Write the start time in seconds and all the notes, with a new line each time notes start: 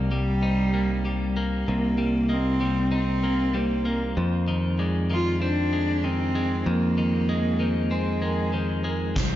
Already playing: C2 C3 G3 A#3 D5
0.10 G3
0.42 D#4 C5
0.74 A#3
1.05 G3
1.37 A#3
1.68 C2 C3 A#3 A#4
1.98 G3
2.29 A#3 D#5
2.34 C4
2.61 G3 C5
2.91 C4 D#4 C5
3.23 A#3 A#4
3.54 G3 A#3 C5
3.85 A#3 A#4
4.17 F2 C5
4.48 D#3
4.79 G#3 D5
5.10 D#3 F4
5.41 C4 D4 C5
5.73 G#3
6.04 D#3 C4
6.35 G#3
6.66 F2 A#3 A#4
6.98 D#3
7.29 G#3 D#5
7.60 D#3 C5
7.91 G#3 C4 C5
8.22 G#3 A#4
8.53 D#3 C5
8.84 G#3 A#4
9.16 C2 C3 C5, kick, snare